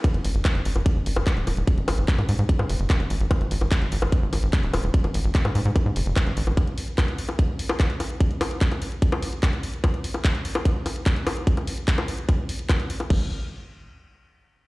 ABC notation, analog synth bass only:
X:1
M:4/4
L:1/16
Q:1/4=147
K:none
V:1 name="Analog synth bass" clef=bass
z ^G,,, G,,, G,,, z G,,, G,,, G,,, z G,,, G,,, G,,, z ^D,,, D,,, D,,, | z ^G,,, G,,, G,,, z ^G,, G,, G,, z G,, ^F,,, F,,, z G,,, G,,, G,,, | z ^G,,, G,,, G,,, z G,,, G,,, G,,, z G,,, G,,, G,,, z ^D,,, D,,, D,,, | z ^G,,, G,,, G,,, z ^G,, G,, G,, z G,, ^F,,, F,,, z A,,, A,,, A,,, |
z16 | z16 | z16 | z16 |
^G,,,2 z12 z2 |]